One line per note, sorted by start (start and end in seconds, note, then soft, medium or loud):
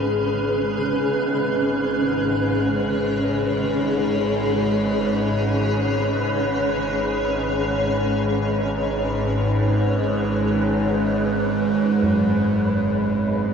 0.00 13.54 G#1 medium
0.00 13.54 G#2 medium
0.00 13.54 C#4 medium
0.00 13.54 G#4 medium
0.00 2.02 B4 medium
0.00 13.54 B4 medium
1.98 13.54 C#5 medium
12.03 13.54 F#2 medium